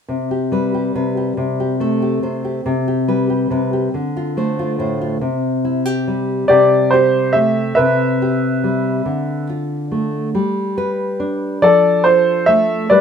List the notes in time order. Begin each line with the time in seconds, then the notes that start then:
0.09 C3
0.31 G4
0.52 G3 B4
0.74 G4
0.95 C3 B4
1.17 G4
1.37 C3
1.60 G4
1.80 A3 A4
2.02 G4
2.23 C3 C5
2.45 G4
2.66 C3
2.88 G4
3.08 G3 B4
3.30 G4
3.50 C3 B4
3.73 G4
3.94 D3
4.17 F4
4.37 A3 C5
4.59 F4
4.79 A2 C5
5.01 F4
5.21 C3
5.65 E4
5.85 G4
6.08 G3
6.48 C3 G4 D5
6.91 G4 C5
7.33 A3 E5
7.75 C3 B4 E5
8.22 G4
8.64 G3
9.06 D3
9.49 F4
9.91 A3
10.35 G3
10.78 B4
11.20 D4
11.62 F3 A4 D5
12.04 F4 C5
12.46 A3 E5
12.90 G3 B4 D5